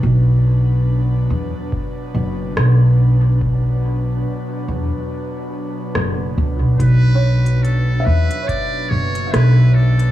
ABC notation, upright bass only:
X:1
M:4/4
L:1/16
Q:"Swing 16ths" 1/4=71
K:Bm
V:1 name="Upright bass" clef=bass
B,,,6 E,, z3 F,,,2 B,,,4- | B,,,4 z2 E,, z4 z F,,,2 D,, B,,, | B,,,6 E,, z3 F,,,2 B,,,4 |]